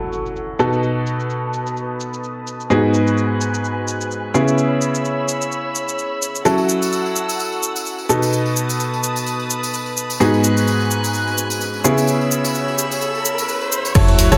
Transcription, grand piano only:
0.00 0.57 F#3 medium
0.00 0.57 C#4 medium
0.00 0.57 E4 medium
0.00 0.57 F#4 medium
0.00 0.57 A4 medium
0.59 2.68 B2 medium
0.59 2.68 B3 medium
0.59 2.68 D#4 medium
0.59 2.68 F#4 medium
0.59 2.68 A4 medium
2.70 4.32 G#2 medium
2.70 4.32 B3 medium
2.70 4.32 D#4 medium
2.70 4.32 F#4 medium
2.70 4.32 G#4 medium
4.34 6.43 C#3 medium
4.34 6.43 B3 medium
4.34 6.43 C#4 medium
4.34 6.43 E4 medium
4.34 6.43 G#4 medium
6.45 8.07 F#3 medium
6.45 8.07 C#4 medium
6.45 8.07 E4 medium
6.45 8.07 F#4 medium
6.45 8.07 A4 medium
8.09 10.18 B2 medium
8.09 10.18 B3 medium
8.09 10.18 D#4 medium
8.09 10.18 F#4 medium
8.09 10.18 A4 medium
10.20 11.82 G#2 medium
10.20 11.82 B3 medium
10.20 11.82 D#4 medium
10.20 11.82 F#4 medium
10.20 11.82 G#4 medium
11.84 13.93 C#3 medium
11.84 13.93 B3 medium
11.84 13.93 C#4 medium
11.84 13.93 E4 medium
11.84 13.93 G#4 medium
13.95 14.27 F#3 loud
13.95 14.27 E4 medium
13.95 14.27 F#4 medium
13.95 14.27 A4 medium
13.95 14.27 C#5 loud
14.32 14.38 F#3 medium
14.32 14.38 E4 medium
14.32 14.38 F#4 medium
14.32 14.38 A4 medium
14.32 14.38 C#5 medium

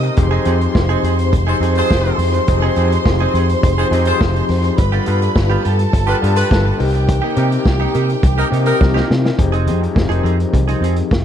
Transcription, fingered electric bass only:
0.18 0.37 F1 loud
0.46 0.66 F2 loud
0.75 0.95 F1 loud
1.03 1.34 F2 loud
1.33 1.52 F1 loud
1.60 1.80 F2 loud
1.91 2.10 F1 loud
2.18 2.38 F2 loud
2.48 2.68 F1 loud
2.77 2.96 F2 loud
3.06 3.25 F1 loud
3.34 3.54 F2 loud
3.63 3.83 F1 medium
3.91 4.11 F2 loud
4.21 4.40 F1 loud
4.49 4.69 F2 loud
4.78 4.98 G1 loud
5.08 5.27 G2 loud
5.36 5.55 G1 loud
5.66 5.85 G2 loud
5.93 6.13 G1 loud
6.23 6.42 G2 medium
6.51 6.70 G1 loud
6.80 7.19 C2 loud
7.37 7.56 C3 loud
7.65 7.85 C2 loud
7.95 8.14 C3 loud
8.23 8.42 C2 medium
8.52 8.71 C3 medium
8.81 9.00 C2 loud
9.10 9.30 C3 medium
9.39 9.68 F1 loud
9.66 9.86 F2 medium
9.96 10.06 F1 loud
10.09 10.19 F1 medium
10.24 10.44 F2 loud
10.54 10.73 C2 medium
10.81 11.01 F2 loud
11.11 11.25 F1 loud

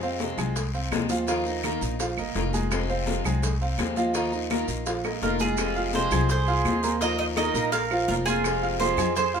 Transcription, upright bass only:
0.00 0.32 F2 medium
0.37 0.88 C2 medium
0.91 1.75 D#2 medium
1.81 2.15 A#1 loud
2.18 2.34 G1 medium
2.35 3.19 F1 medium
3.24 3.75 C2 medium
3.78 4.62 D#2 medium
4.68 5.18 A#1 medium
5.22 6.06 F1 medium
6.11 6.61 C2 loud
6.65 7.49 D#2 medium
7.54 8.04 A#1 medium
8.08 8.92 F1 loud
8.97 9.40 F2 loud

